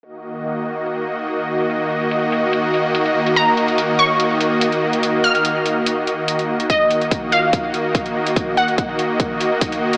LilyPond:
<<
  \new Staff \with { instrumentName = "Synth pluck" } { \time 4/4 \key ees \minor \tempo 4 = 144 r1 | r1 | bes''4. des'''4. r4 | r8 f'''2.~ f'''8 |
ees''4. f''4. r4 | r8 ges''2.~ ges''8 | }
  \new Staff \with { instrumentName = "Supersaw synth" } { \time 4/4 \key ees \minor <ees bes ges' ees''>1~ | <ees bes ges' ees''>1~ | <ees bes ges' ees''>1~ | <ees bes ges' ees''>1 |
<ees bes ges' ees''>1~ | <ees bes ges' ees''>1 | }
  \new DrumStaff \with { instrumentName = "Drums" } \drummode { \time 4/4 hh8 hh16 hh16 hh8 hh8 hh8 hh8 hh16 hh8 hh16 | hh8 hh16 hh16 hh8 hh8 hh8 hh8 hh16 hh8 hh16 | hh8 hh16 hh16 hh8 hh8 hh8 hh8 hh16 hh8 hh16 | hh8 hh16 hh16 hh8 hh8 hh8 hh8 hh16 hh8 hh16 |
<hh bd>8 hh16 hh16 <hh bd>8 hh8 <hh bd>8 hh8 <hh bd>16 hh8 hh16 | <hh bd>8 hh16 hh16 <hh bd>8 hh8 <hh bd>8 hh8 <hh bd>16 hh8 hh16 | }
>>